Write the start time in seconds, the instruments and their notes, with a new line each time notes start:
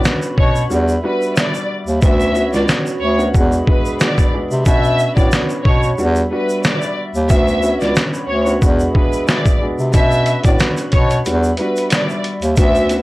Already playing: upright piano B3 C#4 D4 F#4, analog synth pad F#4 B4 B5
0.04 snare, shaker
0.22 shaker
0.38 bass clarinet B2, violin section C#5, kick
0.56 shaker
0.69 bass clarinet E2, analog synth pad G3 E5, upright piano G3 B3 D4 F#4, shaker
0.88 shaker
1.04 upright piano G3 B3 D4 F#4, violin section B4
1.22 shaker
1.36 violin section D5, snare, shaker
1.55 shaker
1.87 bass clarinet D#2, shaker
2.00 bass clarinet D2, upright piano B3 C#4 D4 F#4, analog synth pad F#4 C#5 B5, violin section E5, kick, shaker
2.20 shaker
2.34 upright piano B3 C#4 D4 F#4, shaker
2.53 bass clarinet C#2, violin section D5, snare, shaker
2.68 snare, shaker
2.86 shaker
3.01 bass clarinet D2, violin section C#5
3.18 upright piano B3 C#4 D4 F#4, shaker
3.32 bass clarinet E2, upright piano G#3 B3 D4 F#4, analog synth pad G#4 E5, kick, shaker
3.52 shaker
3.67 upright piano G#3 B3 D4 F#4, violin section B4, kick
3.85 shaker
4.00 upright piano G#3 B3 D4 F#4, violin section D5, snare, shaker
4.18 kick, shaker
4.33 upright piano G#3 B3 D4 F#4
4.51 bass clarinet C3, shaker
4.65 bass clarinet B2, upright piano B3 C#4 D4 F#4, analog synth pad F#4 C#5, violin section E5, kick, shaker
4.84 shaker
4.99 shaker
5.15 bass clarinet A2, upright piano B3 C#4 D4 F#4, violin section D5, kick, shaker
5.32 snare, shaker
5.50 shaker
5.64 bass clarinet B2, violin section C#5, kick
5.83 shaker
5.96 bass clarinet E2, analog synth pad G3 E5, upright piano G3 B3 D4 F#4, shaker
6.16 shaker
6.31 upright piano G3 B3 D4 F#4, violin section B4
6.49 shaker
6.64 violin section D5, snare, shaker
6.82 shaker
7.15 bass clarinet D#2, shaker
7.29 bass clarinet D2, upright piano B3 C#4 D4 F#4, analog synth pad F#4 C#5 B5, violin section E5, kick, shaker
7.48 shaker
7.62 upright piano B3 C#4 D4 F#4, shaker
7.81 bass clarinet C#2, violin section D5, snare, shaker
7.96 snare, shaker
8.14 shaker
8.28 bass clarinet D2, violin section C#5
8.45 upright piano B3 C#4 D4 F#4, shaker
8.61 bass clarinet E2, upright piano G#3 B3 D4 F#4, analog synth pad G#4 E5, kick, shaker
8.80 shaker
8.95 upright piano G#3 B3 D4 F#4, violin section B4, kick
9.13 shaker
9.27 upright piano G#3 B3 D4 F#4, violin section D5, snare, shaker
9.46 kick, shaker
9.61 upright piano G#3 B3 D4 F#4
9.79 bass clarinet C3, shaker
9.92 bass clarinet B2, upright piano B3 C#4 D4 F#4, analog synth pad F#4 B4 B5, violin section E5, kick, closed hi-hat, shaker
10.12 shaker
10.26 closed hi-hat, shaker
10.42 bass clarinet A2, upright piano B3 C#4 D4 F#4, violin section D5, kick, closed hi-hat, shaker
10.59 snare, closed hi-hat, shaker
10.77 closed hi-hat, shaker
10.92 bass clarinet B2, violin section C#5, kick, closed hi-hat
11.11 closed hi-hat, shaker
11.24 bass clarinet E2, analog synth pad G3 E5, upright piano G3 B3 D4 F#4, closed hi-hat, shaker
11.43 shaker
11.57 upright piano G3 B3 D4 F#4, violin section B4, closed hi-hat
11.77 closed hi-hat, shaker
11.90 violin section D5, snare, closed hi-hat, shaker
12.09 shaker
12.24 closed hi-hat
12.42 bass clarinet D#2, closed hi-hat, shaker
12.56 bass clarinet D2, upright piano B3 C#4 D4 F#4, analog synth pad F#4 C#5 B5, violin section E5, kick, closed hi-hat, shaker
12.75 shaker
12.89 upright piano B3 C#4 D4 F#4, closed hi-hat, shaker